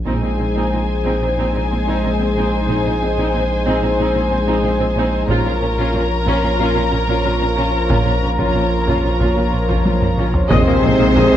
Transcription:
0.06 sub bass A#1, double bass section A#1, cello section A#2, analog synth pad G#3 D#4 G#4 C5, viola section C4 D#4, violin section C5 G#5, taiko
0.23 cello section A#2, viola section C4 D#4
0.39 cello section A#2, viola section C4
0.56 cello section A#2, viola section C4 D#4
0.72 cello section A#2, viola section C4 D#4
1.05 cello section A#2, viola section C4 D#4
1.21 cello section A#2, viola section C4 D#4
1.37 cello section A#2, viola section C4 D#4
1.54 cello section A#2, viola section C4 D#4
1.70 cello section A#2, viola section C4
1.87 cello section A#2, viola section C4 D#4
2.03 cello section A#2, viola section C4 D#4
2.20 cello section A#2, viola section C4
2.36 cello section A#2, viola section C4 D#4
2.68 double bass section A#1, cello section A#2, viola section C4 D#4
2.85 cello section A#2, viola section C4 D#4
3.01 cello section A#2, viola section C4
3.17 cello section A#2, viola section C4 D#4
3.33 cello section A#2, viola section C4 D#4
3.66 cello section A#2, viola section C4 D#4
3.82 cello section A#2, viola section C4 D#4
3.98 cello section A#2, viola section C4 D#4
4.14 cello section A#2, viola section C4 D#4
4.30 cello section A#2, viola section C4
4.47 cello section A#2, viola section C4 D#4
4.63 cello section A#2, viola section C4 D#4
4.80 cello section A#2, viola section C4
4.96 cello section A#2, viola section C4 D#4
5.28 sub bass A#1, double bass section A#1, cello section A#2, analog synth pad F3 F4 A#4 C#5, viola section C#4 F4, violin section A#4 A#5, taiko
5.45 cello section A#2, viola section C#4 F4
5.61 cello section A#2, viola section C#4
5.78 cello section A#2, viola section C#4 F4
5.94 cello section A#2, viola section C#4 F4
6.26 cello section A#2, viola section C#4 F4, taiko
6.43 cello section A#2, viola section C#4 F4
6.59 cello section A#2, viola section C#4 F4
6.76 cello section A#2, viola section C#4 F4
6.91 cello section A#2, viola section C#4
7.08 cello section A#2, viola section C#4 F4
7.24 cello section A#2, viola section C#4 F4
7.40 cello section A#2, viola section C#4
7.56 cello section A#2, viola section C#4 F4
7.89 double bass section A#1, cello section A#2, viola section C#4 F4, taiko
8.06 cello section A#2, viola section C#4 F4
8.22 cello section A#2, viola section C#4
8.39 cello section A#2, viola section C#4 F4, taiko
8.55 cello section A#2, viola section C#4 F4
8.87 cello section A#2, viola section C#4 F4, taiko
9.04 cello section A#2, viola section C#4 F4
9.20 cello section A#2, viola section C#4 F4, taiko
9.36 cello section A#2, viola section C#4 F4
9.52 cello section A#2, viola section C#4
9.68 cello section A#2, viola section C#4 F4, taiko
9.85 cello section A#2, viola section C#4 F4, taiko high
10.01 cello section A#2, viola section C#4, taiko low-mid
10.18 cello section A#2, viola section C#4 F4, taiko mid
10.34 taiko low
10.50 sub bass A#1, tuba A#1, double bass section A#1, analog synth bass A#2, cello section C3, analog synth pad G#3 D#4 C5 D#5, french horn section G#3 D#4, duduk C4, viola section G#4 D#5, violin section C5 G#5, taiko, sub drop
10.66 double bass section A#1, analog synth bass A#3, viola section G#4 D#5
10.83 tuba A#1, double bass section A#1, analog synth bass A#2, viola section G#4 C5
10.99 double bass section A#1, analog synth bass A#3, viola section G#4 D#5
11.15 tuba A#1, double bass section A#1, analog synth bass A#2, viola section G#4 D#5, taiko
11.31 double bass section A#1, analog synth bass A#3, viola section G#4 D#5

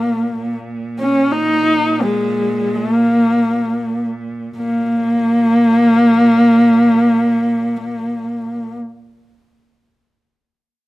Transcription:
Already playing: cello A#2, horsehead fiddle A#3
0.38 cello A#2
1.00 horsehead fiddle C#4
1.32 horsehead fiddle D#4
2.02 horsehead fiddle G#3
2.75 horsehead fiddle A3
2.93 horsehead fiddle A#3
4.56 cello A#2, horsehead fiddle A#3

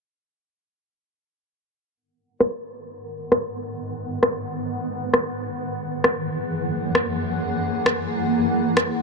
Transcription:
1.95 ambient pad G#2 D#3 B3 A#4 F#5
2.40 cross-stick
3.32 cross-stick
3.77 ambient pad B4
4.23 cross-stick
5.14 cross-stick
5.58 ambient pad F#2 E3 A#3 G#4 F#5
6.04 cross-stick
6.95 cross-stick
7.86 cross-stick
8.77 cross-stick

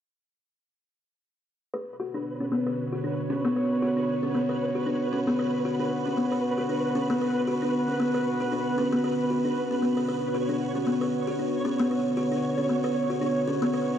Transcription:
1.74 ambient pad B2, kalimba B4, synth texture B4
1.97 ambient pad B3 C#5, kalimba F#4
2.03 ambient pad D3
2.14 kalimba D4
2.38 kalimba C#4, ambient pad F#4
2.52 kalimba B3
2.67 kalimba B4
2.93 kalimba F#4
3.04 kalimba D4
3.30 kalimba C#4
3.45 kalimba B3
3.56 kalimba B4
3.82 kalimba F#4
3.97 kalimba D4
4.23 kalimba C#4
4.34 kalimba B3
4.49 kalimba B4
4.75 kalimba F#4
4.87 kalimba D4
5.13 kalimba C#4
5.27 kalimba B3
5.39 kalimba B4
5.65 kalimba F#4
5.80 kalimba D4
6.06 kalimba C#4
6.17 kalimba B3
6.32 kalimba B4
6.58 kalimba F#4
6.67 kalimba D4, ambient pad B4
6.95 kalimba C#4
7.10 kalimba B3
7.21 kalimba B4
7.47 kalimba F#4
7.62 kalimba D4
7.88 kalimba C#4
8.00 kalimba B3
8.14 kalimba B4
8.40 kalimba F#4
8.52 kalimba D4
8.78 kalimba C#4
8.93 kalimba B3
9.04 kalimba B4
9.30 kalimba F#4
9.45 kalimba D4
9.71 kalimba C#4
9.82 kalimba B3
9.97 kalimba B4
10.08 kalimba B4, synth texture C#5
10.34 kalimba F#4
10.49 kalimba D4
10.75 kalimba C#4
10.87 kalimba B3
11.01 kalimba B4
11.07 ambient pad C#5
11.27 kalimba F#4
11.39 kalimba D4
11.65 kalimba C#4
11.79 kalimba B3
11.91 kalimba B4
12.17 kalimba F#4
12.32 kalimba D4
12.58 kalimba C#4
12.69 kalimba B3
12.84 kalimba B4
13.10 kalimba F#4
13.21 kalimba D4
13.48 kalimba C#4
13.62 kalimba B3
13.74 kalimba B4

